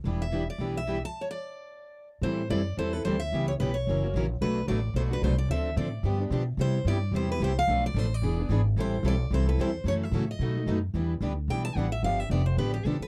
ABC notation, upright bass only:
X:1
M:4/4
L:1/8
Q:"Swing" 1/4=220
K:Em
V:1 name="Upright bass" clef=bass
E,,,4 B,,,4 | z8 | A,,2 F,,2 E,,2 D,,2 | ^C,,2 B,,,2 F,,,2 ^A,,,2 |
B,,,2 A,,,2 B,,,2 C,,2 | D,,2 A,,2 G,,2 B,,2 | C,2 G,,2 E,,2 C,,2 | B,,,2 A,,,2 E,,,2 ^G,,,2 |
A,,,2 B,,,2 C,,2 E,,2 | F,,2 A,,2 B,,2 F,,2 | E,,2 D,,2 B,,,2 A,,,2 | G,,,2 =F,,,2 A,,,2 B,,, z |]